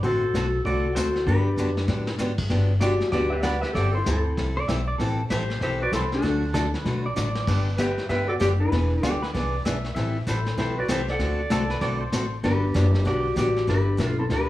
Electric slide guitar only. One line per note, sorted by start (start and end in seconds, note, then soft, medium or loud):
0.03 0.61 F#4 medium
0.03 0.61 C5 medium
0.66 0.94 F#4 medium
0.66 0.97 D5 medium
0.95 1.24 F#4 medium
0.95 1.27 C5 medium
1.27 2.16 D4 medium
1.27 2.16 B4 medium
2.80 3.10 F#4 medium
2.80 3.11 D5 medium
3.12 3.32 F#4 medium
3.12 3.32 D5 loud
3.30 3.43 G4 medium
3.30 3.43 E5 loud
3.43 3.62 B4 medium
3.43 3.61 F#5 loud
3.61 3.75 G4 medium
3.61 3.74 E5 medium
3.75 3.94 G4 medium
3.75 3.94 D5 loud
3.95 4.07 E4 medium
3.95 4.06 C5 medium
4.07 4.65 C4 medium
4.07 4.65 A4 medium
5.30 5.59 G4 medium
5.30 5.62 E5 loud
5.63 5.80 G4 medium
5.63 5.82 E5 loud
5.82 5.92 F#4 medium
5.82 5.93 D5 medium
5.94 6.11 E4 medium
5.94 6.13 C5 medium
6.14 6.71 D4 medium
6.14 6.71 A4 medium
7.80 8.08 G4 medium
7.80 8.08 E5 loud
8.09 8.27 G4 medium
8.09 8.28 E5 loud
8.28 8.33 F#4 medium
8.28 8.33 D5 medium
8.41 8.47 G4 medium
8.41 8.46 D5 loud
8.60 9.19 D4 medium
8.60 9.04 B4 medium
9.04 9.18 A4 medium
10.28 10.56 E4 medium
10.28 10.57 C5 medium
10.59 10.76 E4 medium
10.59 10.79 C5 medium
10.79 10.89 F#4 medium
10.79 10.90 D5 medium
10.91 11.08 G4 medium
10.91 11.10 E5 medium
11.10 12.10 A4 medium
11.10 12.15 F#5 medium
12.44 13.02 D4 medium
12.44 13.08 B4 medium
13.07 13.36 F#4 medium
13.07 13.38 D5 medium
13.39 13.67 F#4 medium
13.39 13.70 D5 medium
13.69 14.16 D4 medium
13.69 14.16 B4 medium
14.19 14.25 C4 medium
14.19 14.24 A4 medium
14.32 14.49 D4 medium
14.32 14.49 B4 medium